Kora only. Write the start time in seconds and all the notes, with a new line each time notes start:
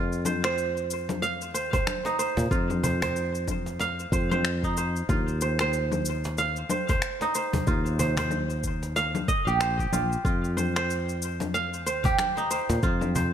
Already playing: F4
0.26 C5
0.44 C5
1.22 F5
1.54 C5
1.73 C5
2.06 D#4
2.19 C5
2.51 F4
2.83 C5
3.02 C5
3.80 F5
4.13 C5
4.31 C5
4.64 D#4
4.77 C5
5.09 F4
5.42 C5
5.61 C5
6.38 F5
6.71 C5
6.89 C5
7.22 D#4
7.35 C5
7.67 F4
7.99 C5
8.18 C5
8.96 F5
9.28 D#5
9.47 G4
9.60 C5
9.79 G4
9.93 F4
10.25 F4
10.57 C5
10.76 C5
11.54 F5
11.86 C5
12.05 G4
12.37 D#4
12.51 C5
12.83 F4
13.16 C5